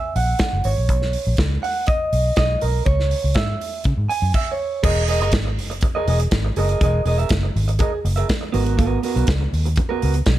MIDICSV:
0, 0, Header, 1, 5, 480
1, 0, Start_track
1, 0, Tempo, 493016
1, 867, Time_signature, 4, 2, 24, 8
1, 10115, End_track
2, 0, Start_track
2, 0, Title_t, "Clean electric guitar"
2, 0, Program_c, 0, 27
2, 0, Note_on_c, 0, 76, 103
2, 153, Note_off_c, 0, 76, 0
2, 157, Note_on_c, 0, 78, 92
2, 632, Note_on_c, 0, 73, 80
2, 647, Note_off_c, 0, 78, 0
2, 1312, Note_off_c, 0, 73, 0
2, 1587, Note_on_c, 0, 78, 107
2, 1811, Note_off_c, 0, 78, 0
2, 1823, Note_on_c, 0, 75, 96
2, 2294, Note_off_c, 0, 75, 0
2, 2306, Note_on_c, 0, 75, 90
2, 2550, Note_on_c, 0, 70, 84
2, 2555, Note_off_c, 0, 75, 0
2, 2776, Note_off_c, 0, 70, 0
2, 2780, Note_on_c, 0, 73, 89
2, 3263, Note_on_c, 0, 76, 90
2, 3280, Note_off_c, 0, 73, 0
2, 3713, Note_off_c, 0, 76, 0
2, 3987, Note_on_c, 0, 80, 107
2, 4229, Note_off_c, 0, 80, 0
2, 4233, Note_on_c, 0, 76, 95
2, 4381, Note_off_c, 0, 76, 0
2, 4397, Note_on_c, 0, 73, 82
2, 4692, Note_off_c, 0, 73, 0
2, 4703, Note_on_c, 0, 68, 90
2, 4708, Note_on_c, 0, 70, 96
2, 4717, Note_on_c, 0, 75, 102
2, 4893, Note_off_c, 0, 68, 0
2, 4895, Note_off_c, 0, 70, 0
2, 4900, Note_off_c, 0, 75, 0
2, 4944, Note_on_c, 0, 68, 76
2, 4954, Note_on_c, 0, 70, 77
2, 4958, Note_on_c, 0, 75, 81
2, 5057, Note_off_c, 0, 75, 0
2, 5066, Note_off_c, 0, 70, 0
2, 5069, Note_on_c, 0, 75, 71
2, 5078, Note_off_c, 0, 68, 0
2, 5078, Note_on_c, 0, 70, 79
2, 5089, Note_on_c, 0, 68, 70
2, 5172, Note_off_c, 0, 68, 0
2, 5179, Note_off_c, 0, 70, 0
2, 5184, Note_off_c, 0, 75, 0
2, 5792, Note_on_c, 0, 75, 75
2, 5802, Note_on_c, 0, 70, 77
2, 5810, Note_on_c, 0, 68, 78
2, 5900, Note_off_c, 0, 68, 0
2, 5906, Note_off_c, 0, 70, 0
2, 5912, Note_on_c, 0, 68, 69
2, 5915, Note_off_c, 0, 75, 0
2, 5918, Note_on_c, 0, 70, 61
2, 5927, Note_on_c, 0, 75, 67
2, 6020, Note_off_c, 0, 75, 0
2, 6033, Note_off_c, 0, 70, 0
2, 6056, Note_off_c, 0, 68, 0
2, 6396, Note_on_c, 0, 68, 98
2, 6406, Note_on_c, 0, 70, 99
2, 6411, Note_on_c, 0, 75, 89
2, 6505, Note_off_c, 0, 75, 0
2, 6517, Note_on_c, 0, 75, 65
2, 6518, Note_off_c, 0, 70, 0
2, 6525, Note_off_c, 0, 68, 0
2, 6530, Note_on_c, 0, 70, 60
2, 6537, Note_on_c, 0, 68, 58
2, 6619, Note_off_c, 0, 68, 0
2, 6631, Note_on_c, 0, 68, 81
2, 6632, Note_off_c, 0, 70, 0
2, 6639, Note_off_c, 0, 75, 0
2, 6643, Note_on_c, 0, 70, 90
2, 6651, Note_on_c, 0, 75, 94
2, 6816, Note_off_c, 0, 68, 0
2, 6823, Note_off_c, 0, 70, 0
2, 6826, Note_off_c, 0, 75, 0
2, 6867, Note_on_c, 0, 68, 61
2, 6881, Note_on_c, 0, 70, 71
2, 6884, Note_on_c, 0, 75, 70
2, 6989, Note_off_c, 0, 75, 0
2, 6990, Note_off_c, 0, 70, 0
2, 6993, Note_on_c, 0, 76, 75
2, 6996, Note_off_c, 0, 68, 0
2, 7002, Note_on_c, 0, 70, 70
2, 7008, Note_on_c, 0, 68, 62
2, 7102, Note_off_c, 0, 68, 0
2, 7104, Note_off_c, 0, 70, 0
2, 7123, Note_off_c, 0, 76, 0
2, 7585, Note_on_c, 0, 68, 95
2, 7596, Note_on_c, 0, 70, 101
2, 7602, Note_on_c, 0, 75, 86
2, 7702, Note_off_c, 0, 75, 0
2, 7715, Note_off_c, 0, 70, 0
2, 7774, Note_off_c, 0, 68, 0
2, 7944, Note_on_c, 0, 76, 58
2, 7955, Note_on_c, 0, 70, 53
2, 7963, Note_on_c, 0, 68, 51
2, 8054, Note_off_c, 0, 68, 0
2, 8059, Note_off_c, 0, 70, 0
2, 8068, Note_off_c, 0, 76, 0
2, 8299, Note_on_c, 0, 59, 95
2, 8308, Note_on_c, 0, 66, 95
2, 8316, Note_on_c, 0, 70, 93
2, 8415, Note_off_c, 0, 70, 0
2, 8426, Note_on_c, 0, 70, 72
2, 8427, Note_off_c, 0, 66, 0
2, 8434, Note_off_c, 0, 59, 0
2, 8438, Note_on_c, 0, 66, 66
2, 8446, Note_on_c, 0, 59, 61
2, 8530, Note_off_c, 0, 59, 0
2, 8537, Note_off_c, 0, 66, 0
2, 8542, Note_on_c, 0, 59, 91
2, 8545, Note_off_c, 0, 70, 0
2, 8548, Note_on_c, 0, 66, 89
2, 8556, Note_on_c, 0, 70, 100
2, 8740, Note_off_c, 0, 59, 0
2, 8743, Note_off_c, 0, 66, 0
2, 8747, Note_off_c, 0, 70, 0
2, 8787, Note_on_c, 0, 59, 66
2, 8797, Note_on_c, 0, 66, 76
2, 8804, Note_on_c, 0, 70, 80
2, 8899, Note_off_c, 0, 70, 0
2, 8907, Note_off_c, 0, 66, 0
2, 8911, Note_on_c, 0, 70, 78
2, 8918, Note_off_c, 0, 59, 0
2, 8918, Note_on_c, 0, 66, 67
2, 8930, Note_on_c, 0, 59, 64
2, 9018, Note_off_c, 0, 59, 0
2, 9022, Note_off_c, 0, 66, 0
2, 9029, Note_off_c, 0, 70, 0
2, 9630, Note_on_c, 0, 70, 91
2, 9640, Note_on_c, 0, 66, 82
2, 9644, Note_on_c, 0, 59, 71
2, 9745, Note_off_c, 0, 59, 0
2, 9751, Note_off_c, 0, 66, 0
2, 9757, Note_on_c, 0, 59, 66
2, 9762, Note_off_c, 0, 70, 0
2, 9763, Note_on_c, 0, 66, 76
2, 9774, Note_on_c, 0, 70, 76
2, 9878, Note_off_c, 0, 70, 0
2, 9888, Note_off_c, 0, 66, 0
2, 9899, Note_off_c, 0, 59, 0
2, 10115, End_track
3, 0, Start_track
3, 0, Title_t, "Fingered electric bass"
3, 0, Program_c, 1, 33
3, 152, Note_on_c, 1, 34, 95
3, 318, Note_off_c, 1, 34, 0
3, 514, Note_on_c, 1, 30, 86
3, 596, Note_off_c, 1, 30, 0
3, 631, Note_on_c, 1, 32, 85
3, 714, Note_off_c, 1, 32, 0
3, 756, Note_on_c, 1, 34, 82
3, 870, Note_off_c, 1, 34, 0
3, 870, Note_on_c, 1, 35, 119
3, 1121, Note_off_c, 1, 35, 0
3, 1233, Note_on_c, 1, 34, 92
3, 1315, Note_off_c, 1, 34, 0
3, 1350, Note_on_c, 1, 37, 86
3, 1517, Note_off_c, 1, 37, 0
3, 2071, Note_on_c, 1, 35, 85
3, 2238, Note_off_c, 1, 35, 0
3, 2311, Note_on_c, 1, 35, 88
3, 2478, Note_off_c, 1, 35, 0
3, 2557, Note_on_c, 1, 35, 81
3, 2722, Note_off_c, 1, 35, 0
3, 2794, Note_on_c, 1, 37, 107
3, 3044, Note_off_c, 1, 37, 0
3, 3154, Note_on_c, 1, 37, 99
3, 3237, Note_off_c, 1, 37, 0
3, 3271, Note_on_c, 1, 44, 90
3, 3438, Note_off_c, 1, 44, 0
3, 3753, Note_on_c, 1, 49, 104
3, 3836, Note_off_c, 1, 49, 0
3, 3870, Note_on_c, 1, 44, 90
3, 3954, Note_off_c, 1, 44, 0
3, 4110, Note_on_c, 1, 42, 92
3, 4194, Note_off_c, 1, 42, 0
3, 4713, Note_on_c, 1, 28, 103
3, 5074, Note_off_c, 1, 28, 0
3, 5074, Note_on_c, 1, 30, 93
3, 5193, Note_off_c, 1, 30, 0
3, 5193, Note_on_c, 1, 32, 95
3, 5444, Note_off_c, 1, 32, 0
3, 5444, Note_on_c, 1, 30, 106
3, 5691, Note_off_c, 1, 30, 0
3, 5916, Note_on_c, 1, 28, 109
3, 6082, Note_off_c, 1, 28, 0
3, 6156, Note_on_c, 1, 32, 101
3, 6322, Note_off_c, 1, 32, 0
3, 6393, Note_on_c, 1, 30, 87
3, 6560, Note_off_c, 1, 30, 0
3, 6637, Note_on_c, 1, 28, 125
3, 6802, Note_off_c, 1, 28, 0
3, 6868, Note_on_c, 1, 28, 109
3, 7036, Note_off_c, 1, 28, 0
3, 7112, Note_on_c, 1, 30, 87
3, 7279, Note_off_c, 1, 30, 0
3, 7356, Note_on_c, 1, 32, 103
3, 7606, Note_off_c, 1, 32, 0
3, 7832, Note_on_c, 1, 30, 103
3, 7999, Note_off_c, 1, 30, 0
3, 8316, Note_on_c, 1, 32, 95
3, 8733, Note_off_c, 1, 32, 0
3, 8917, Note_on_c, 1, 35, 106
3, 8999, Note_off_c, 1, 35, 0
3, 9036, Note_on_c, 1, 37, 96
3, 9202, Note_off_c, 1, 37, 0
3, 9276, Note_on_c, 1, 39, 101
3, 9526, Note_off_c, 1, 39, 0
3, 9766, Note_on_c, 1, 37, 106
3, 9928, Note_off_c, 1, 37, 0
3, 9999, Note_on_c, 1, 35, 98
3, 10115, Note_off_c, 1, 35, 0
3, 10115, End_track
4, 0, Start_track
4, 0, Title_t, "Muted clean electric guitar strokes"
4, 5312, Note_on_c, 9, 29, 54
4, 5409, Note_off_c, 9, 29, 0
4, 5550, Note_on_c, 9, 29, 50
4, 5647, Note_off_c, 9, 29, 0
4, 5672, Note_on_c, 9, 29, 37
4, 5769, Note_off_c, 9, 29, 0
4, 6031, Note_on_c, 9, 29, 48
4, 6129, Note_off_c, 9, 29, 0
4, 6145, Note_on_c, 9, 29, 51
4, 6243, Note_off_c, 9, 29, 0
4, 6276, Note_on_c, 9, 29, 53
4, 6373, Note_off_c, 9, 29, 0
4, 7127, Note_on_c, 9, 29, 41
4, 7224, Note_off_c, 9, 29, 0
4, 7235, Note_on_c, 9, 29, 55
4, 7332, Note_off_c, 9, 29, 0
4, 7475, Note_on_c, 9, 29, 49
4, 7572, Note_off_c, 9, 29, 0
4, 7714, Note_on_c, 9, 29, 53
4, 7811, Note_off_c, 9, 29, 0
4, 7833, Note_on_c, 9, 29, 33
4, 7931, Note_off_c, 9, 29, 0
4, 8066, Note_on_c, 9, 29, 43
4, 8163, Note_off_c, 9, 29, 0
4, 8189, Note_on_c, 9, 29, 51
4, 8286, Note_off_c, 9, 29, 0
4, 9159, Note_on_c, 9, 29, 51
4, 9256, Note_off_c, 9, 29, 0
4, 9400, Note_on_c, 9, 29, 53
4, 9498, Note_off_c, 9, 29, 0
4, 9521, Note_on_c, 9, 29, 42
4, 9618, Note_off_c, 9, 29, 0
4, 9889, Note_on_c, 9, 29, 53
4, 9987, Note_off_c, 9, 29, 0
4, 10008, Note_on_c, 9, 29, 45
4, 10105, Note_off_c, 9, 29, 0
4, 10115, End_track
5, 0, Start_track
5, 0, Title_t, "Drums"
5, 153, Note_on_c, 9, 46, 69
5, 250, Note_off_c, 9, 46, 0
5, 378, Note_on_c, 9, 42, 71
5, 385, Note_on_c, 9, 38, 114
5, 389, Note_on_c, 9, 36, 114
5, 475, Note_off_c, 9, 42, 0
5, 482, Note_off_c, 9, 38, 0
5, 486, Note_off_c, 9, 36, 0
5, 622, Note_on_c, 9, 46, 66
5, 719, Note_off_c, 9, 46, 0
5, 864, Note_on_c, 9, 42, 64
5, 866, Note_on_c, 9, 36, 102
5, 962, Note_off_c, 9, 42, 0
5, 964, Note_off_c, 9, 36, 0
5, 992, Note_on_c, 9, 38, 35
5, 1089, Note_off_c, 9, 38, 0
5, 1101, Note_on_c, 9, 46, 74
5, 1198, Note_off_c, 9, 46, 0
5, 1334, Note_on_c, 9, 42, 64
5, 1347, Note_on_c, 9, 36, 117
5, 1353, Note_on_c, 9, 38, 116
5, 1431, Note_off_c, 9, 42, 0
5, 1444, Note_off_c, 9, 36, 0
5, 1451, Note_off_c, 9, 38, 0
5, 1598, Note_on_c, 9, 46, 70
5, 1695, Note_off_c, 9, 46, 0
5, 1816, Note_on_c, 9, 42, 70
5, 1831, Note_on_c, 9, 36, 121
5, 1913, Note_off_c, 9, 42, 0
5, 1928, Note_off_c, 9, 36, 0
5, 2071, Note_on_c, 9, 46, 66
5, 2168, Note_off_c, 9, 46, 0
5, 2300, Note_on_c, 9, 42, 73
5, 2307, Note_on_c, 9, 38, 121
5, 2309, Note_on_c, 9, 36, 122
5, 2397, Note_off_c, 9, 42, 0
5, 2404, Note_off_c, 9, 38, 0
5, 2407, Note_off_c, 9, 36, 0
5, 2544, Note_on_c, 9, 46, 65
5, 2642, Note_off_c, 9, 46, 0
5, 2786, Note_on_c, 9, 42, 64
5, 2788, Note_on_c, 9, 36, 110
5, 2884, Note_off_c, 9, 42, 0
5, 2885, Note_off_c, 9, 36, 0
5, 2917, Note_on_c, 9, 38, 33
5, 3015, Note_off_c, 9, 38, 0
5, 3028, Note_on_c, 9, 46, 70
5, 3125, Note_off_c, 9, 46, 0
5, 3256, Note_on_c, 9, 42, 77
5, 3268, Note_on_c, 9, 36, 127
5, 3276, Note_on_c, 9, 38, 115
5, 3353, Note_off_c, 9, 42, 0
5, 3366, Note_off_c, 9, 36, 0
5, 3373, Note_off_c, 9, 38, 0
5, 3518, Note_on_c, 9, 46, 70
5, 3615, Note_off_c, 9, 46, 0
5, 3740, Note_on_c, 9, 42, 74
5, 3752, Note_on_c, 9, 36, 109
5, 3837, Note_off_c, 9, 42, 0
5, 3849, Note_off_c, 9, 36, 0
5, 3996, Note_on_c, 9, 46, 65
5, 4093, Note_off_c, 9, 46, 0
5, 4227, Note_on_c, 9, 49, 91
5, 4228, Note_on_c, 9, 36, 104
5, 4325, Note_off_c, 9, 36, 0
5, 4325, Note_off_c, 9, 49, 0
5, 4708, Note_on_c, 9, 36, 115
5, 4708, Note_on_c, 9, 49, 115
5, 4806, Note_off_c, 9, 36, 0
5, 4806, Note_off_c, 9, 49, 0
5, 4944, Note_on_c, 9, 46, 68
5, 5041, Note_off_c, 9, 46, 0
5, 5078, Note_on_c, 9, 42, 42
5, 5175, Note_off_c, 9, 42, 0
5, 5175, Note_on_c, 9, 42, 73
5, 5188, Note_on_c, 9, 36, 119
5, 5195, Note_on_c, 9, 38, 120
5, 5273, Note_off_c, 9, 42, 0
5, 5286, Note_off_c, 9, 36, 0
5, 5292, Note_off_c, 9, 38, 0
5, 5438, Note_on_c, 9, 46, 71
5, 5536, Note_off_c, 9, 46, 0
5, 5562, Note_on_c, 9, 42, 49
5, 5656, Note_off_c, 9, 42, 0
5, 5656, Note_on_c, 9, 42, 67
5, 5672, Note_on_c, 9, 36, 127
5, 5753, Note_off_c, 9, 42, 0
5, 5769, Note_off_c, 9, 36, 0
5, 5915, Note_on_c, 9, 46, 72
5, 6012, Note_off_c, 9, 46, 0
5, 6033, Note_on_c, 9, 42, 49
5, 6130, Note_off_c, 9, 42, 0
5, 6146, Note_on_c, 9, 42, 78
5, 6153, Note_on_c, 9, 36, 124
5, 6153, Note_on_c, 9, 38, 127
5, 6244, Note_off_c, 9, 42, 0
5, 6250, Note_off_c, 9, 36, 0
5, 6251, Note_off_c, 9, 38, 0
5, 6389, Note_on_c, 9, 46, 67
5, 6486, Note_off_c, 9, 46, 0
5, 6513, Note_on_c, 9, 42, 51
5, 6610, Note_off_c, 9, 42, 0
5, 6630, Note_on_c, 9, 42, 74
5, 6631, Note_on_c, 9, 36, 112
5, 6727, Note_off_c, 9, 42, 0
5, 6728, Note_off_c, 9, 36, 0
5, 6869, Note_on_c, 9, 46, 72
5, 6966, Note_off_c, 9, 46, 0
5, 7004, Note_on_c, 9, 42, 42
5, 7099, Note_off_c, 9, 42, 0
5, 7099, Note_on_c, 9, 42, 73
5, 7112, Note_on_c, 9, 36, 127
5, 7118, Note_on_c, 9, 38, 110
5, 7196, Note_off_c, 9, 42, 0
5, 7209, Note_off_c, 9, 36, 0
5, 7216, Note_off_c, 9, 38, 0
5, 7364, Note_on_c, 9, 46, 71
5, 7462, Note_off_c, 9, 46, 0
5, 7483, Note_on_c, 9, 42, 45
5, 7581, Note_off_c, 9, 42, 0
5, 7583, Note_on_c, 9, 42, 75
5, 7596, Note_on_c, 9, 36, 124
5, 7680, Note_off_c, 9, 42, 0
5, 7693, Note_off_c, 9, 36, 0
5, 7841, Note_on_c, 9, 46, 67
5, 7939, Note_off_c, 9, 46, 0
5, 7956, Note_on_c, 9, 42, 54
5, 8053, Note_off_c, 9, 42, 0
5, 8074, Note_on_c, 9, 42, 79
5, 8078, Note_on_c, 9, 36, 116
5, 8081, Note_on_c, 9, 38, 123
5, 8172, Note_off_c, 9, 42, 0
5, 8176, Note_off_c, 9, 36, 0
5, 8178, Note_off_c, 9, 38, 0
5, 8312, Note_on_c, 9, 46, 67
5, 8410, Note_off_c, 9, 46, 0
5, 8435, Note_on_c, 9, 42, 48
5, 8532, Note_off_c, 9, 42, 0
5, 8555, Note_on_c, 9, 36, 118
5, 8555, Note_on_c, 9, 42, 72
5, 8652, Note_off_c, 9, 36, 0
5, 8652, Note_off_c, 9, 42, 0
5, 8794, Note_on_c, 9, 46, 68
5, 8891, Note_off_c, 9, 46, 0
5, 8926, Note_on_c, 9, 42, 43
5, 9024, Note_off_c, 9, 42, 0
5, 9024, Note_on_c, 9, 42, 80
5, 9035, Note_on_c, 9, 36, 127
5, 9043, Note_on_c, 9, 38, 113
5, 9121, Note_off_c, 9, 42, 0
5, 9132, Note_off_c, 9, 36, 0
5, 9141, Note_off_c, 9, 38, 0
5, 9285, Note_on_c, 9, 46, 70
5, 9382, Note_off_c, 9, 46, 0
5, 9406, Note_on_c, 9, 42, 47
5, 9501, Note_off_c, 9, 42, 0
5, 9501, Note_on_c, 9, 42, 71
5, 9517, Note_on_c, 9, 36, 127
5, 9598, Note_off_c, 9, 42, 0
5, 9614, Note_off_c, 9, 36, 0
5, 9758, Note_on_c, 9, 46, 68
5, 9855, Note_off_c, 9, 46, 0
5, 9872, Note_on_c, 9, 42, 51
5, 9969, Note_off_c, 9, 42, 0
5, 9987, Note_on_c, 9, 42, 70
5, 9994, Note_on_c, 9, 38, 125
5, 9996, Note_on_c, 9, 36, 126
5, 10085, Note_off_c, 9, 42, 0
5, 10091, Note_off_c, 9, 38, 0
5, 10093, Note_off_c, 9, 36, 0
5, 10115, End_track
0, 0, End_of_file